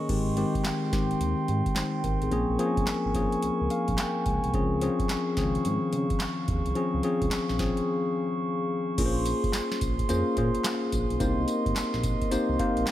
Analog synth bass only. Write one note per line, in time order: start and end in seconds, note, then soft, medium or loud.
0.09 0.45 G#1 loud
0.93 1.14 G#1 medium
1.21 1.35 D#2 loud
1.49 1.62 G#2 medium
2.04 2.18 G#1 medium
2.22 2.30 A1 medium
2.32 2.46 A#1 loud
2.50 2.57 A#1 loud
2.77 2.85 F1 medium
2.88 2.95 G#1 medium
3.06 3.27 G#1 medium
3.44 3.50 C#2 medium
3.62 3.69 C#2 medium
3.88 3.96 A#1 medium
4.26 4.40 C#2 medium
4.45 4.52 C2 medium
4.54 4.89 C#2 loud
5.37 5.59 C#2 medium
5.65 5.79 G#2 loud
5.93 6.07 C#3 loud
6.48 6.62 D#2 medium
6.67 6.74 C2 medium
6.94 7.02 C#2 medium
7.22 7.29 C#2 medium
7.32 7.39 A#1 soft
7.50 7.71 A#1 medium
8.98 9.34 A#1 loud
9.82 10.03 A#1 medium
10.09 10.23 F2 loud
10.37 10.51 A#2 loud
10.93 11.07 A#1 loud
11.10 11.18 B1 medium
11.20 11.34 C2 loud
11.38 11.46 C2 loud
11.66 11.74 G1 medium
11.76 11.83 A#1 medium
11.94 12.15 A#1 loud
12.32 12.39 C2 medium
12.49 12.57 C2 medium
12.77 12.85 A#1 medium